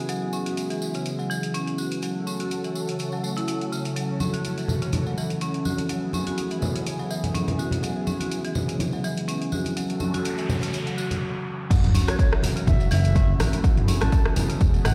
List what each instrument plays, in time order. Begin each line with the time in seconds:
Already playing: analog synth pad B3 G#4
0.09 marimba F#3, analog synth pad G#3 E4, closed hi-hat, tambourine
0.33 marimba C#4, tambourine
0.46 marimba F#4, closed hi-hat, tambourine
0.57 closed hi-hat, tambourine
0.70 marimba E3, closed hi-hat, tambourine
0.82 tambourine
0.94 marimba C#3, closed hi-hat, tambourine
1.06 closed hi-hat, tambourine
1.19 marimba F#3, tambourine
1.30 marimba E3, tambourine
1.43 closed hi-hat, tambourine
1.54 marimba C#4, closed hi-hat, tambourine
1.67 closed hi-hat
1.78 marimba F#4, tambourine
1.91 closed hi-hat, tambourine
2.02 marimba F#3, analog synth pad A3 C#4 F#4 A4, closed hi-hat, tambourine
2.27 marimba C#4, tambourine
2.40 marimba F#4, closed hi-hat, tambourine
2.51 closed hi-hat, tambourine
2.64 marimba E3, closed hi-hat, tambourine
2.75 tambourine
2.87 marimba C#3, closed hi-hat, tambourine
2.99 closed hi-hat, tambourine
3.12 marimba F#3, tambourine
3.24 marimba A3, tambourine
3.36 marimba E4, closed hi-hat, tambourine
3.48 marimba E4, closed hi-hat, tambourine
3.61 closed hi-hat
3.72 marimba C#3, tambourine
3.85 closed hi-hat, tambourine
3.96 analog synth pad E3 F#4, marimba F#3, closed hi-hat, tambourine
4.20 marimba C#4, tambourine, high conga
4.33 marimba F#4, closed hi-hat, tambourine, high conga
4.45 closed hi-hat, tambourine
4.58 marimba E3, closed hi-hat, tambourine
4.68 tambourine, low conga
4.82 marimba C#3, closed hi-hat, tambourine
4.92 closed hi-hat, tambourine, high conga, low conga
5.06 marimba F#3, tambourine
5.17 marimba E3, tambourine
5.30 closed hi-hat, tambourine
5.41 marimba C#4, closed hi-hat, tambourine
5.54 closed hi-hat
5.65 marimba F#4, tambourine, high conga
5.78 closed hi-hat, tambourine, high conga
5.89 analog synth pad C#3 A3 B3 E4 G#4, marimba F#3, closed hi-hat, tambourine
6.13 marimba C#4, tambourine, high conga
6.26 marimba F#4, closed hi-hat, tambourine, high conga
6.38 closed hi-hat, tambourine
6.51 marimba E3, closed hi-hat, tambourine
6.62 tambourine, high conga, low conga
6.75 marimba C#3, closed hi-hat, tambourine
6.86 closed hi-hat, tambourine
6.99 marimba F#3, tambourine
7.11 marimba E3, tambourine
7.24 closed hi-hat, tambourine, low conga
7.34 marimba C#4, closed hi-hat, tambourine, high conga
7.48 closed hi-hat, low conga
7.59 marimba F#4, tambourine
7.71 closed hi-hat, tambourine, low conga
7.83 marimba F#3, analog synth pad G#3, closed hi-hat, tambourine
8.07 marimba C#4, tambourine, high conga
8.20 marimba F#4, closed hi-hat, tambourine, high conga
8.32 closed hi-hat, tambourine
8.44 marimba E3, closed hi-hat, tambourine
8.55 tambourine, low conga
8.69 marimba C#3, closed hi-hat, tambourine
8.79 closed hi-hat, tambourine, high conga, low conga
8.92 marimba F#3, tambourine
9.04 marimba E3, tambourine
9.16 closed hi-hat, tambourine
9.28 marimba C#4, closed hi-hat, tambourine
9.42 closed hi-hat
9.52 marimba F#4, tambourine, high conga
9.65 closed hi-hat, tambourine, high conga
9.77 marimba F#3, analog synth pad A3 C#4 F#4 A4, closed hi-hat, tambourine, noise sweep
9.90 closed hi-hat, tambourine
10.00 marimba C#4, tambourine, high conga
10.14 marimba F#4, closed hi-hat, tambourine, high conga
10.25 closed hi-hat, tambourine
10.38 marimba E3, closed hi-hat, tambourine
10.49 tambourine, high conga, low conga
10.62 marimba C#3, closed hi-hat, tambourine
10.73 closed hi-hat, tambourine
10.87 marimba F#3, closed hi-hat, tambourine
10.98 marimba F#4, tambourine
11.11 closed hi-hat, tambourine, low conga
11.70 analog synth pad C#3 F#3 A3 E4 F#4, marimba F#3, kick, closed hi-hat, crash, tambourine, sub drop
11.84 closed hi-hat, mid tom
11.95 marimba C#4, open hi-hat, tambourine, high conga
12.08 marimba F#4, bansuri C#5, cross-stick, closed hi-hat, tambourine, high conga
12.19 bansuri C#5, kick, closed hi-hat, tambourine
12.32 marimba E3, cross-stick
12.43 open hi-hat, tambourine, low conga
12.56 marimba C#3, closed hi-hat, tambourine
12.67 analog synth bass F#1, bansuri E5, kick, closed hi-hat, mid tom, tambourine, high conga, low conga
12.80 marimba F#3, closed hi-hat, tambourine
12.91 analog synth bass F#1, marimba E3, bansuri E5, open hi-hat, tambourine, low conga
13.04 closed hi-hat, tambourine
13.15 marimba C#4, kick, closed hi-hat, tambourine
13.40 analog synth bass A1, marimba F#4, cross-stick, open hi-hat, tambourine, high conga
13.53 closed hi-hat, tambourine, high conga
13.64 marimba F#3, analog synth pad B3 G#4, kick, closed hi-hat, tambourine
13.77 closed hi-hat, mid tom
13.88 marimba C#4, open hi-hat, tambourine, high conga
14.01 analog synth bass A1, marimba F#4, bansuri A5, cross-stick, closed hi-hat, tambourine, high conga
14.12 kick, closed hi-hat, tambourine
14.25 marimba E3, cross-stick
14.36 open hi-hat, tambourine, high conga, low conga
14.50 marimba C#3, closed hi-hat, tambourine
14.61 analog synth bass E1, kick, closed hi-hat, tambourine
14.74 marimba F#3, closed hi-hat, tambourine
14.85 analog synth bass A1, marimba E3, bansuri F#5, cross-stick, mid tom, open hi-hat, tambourine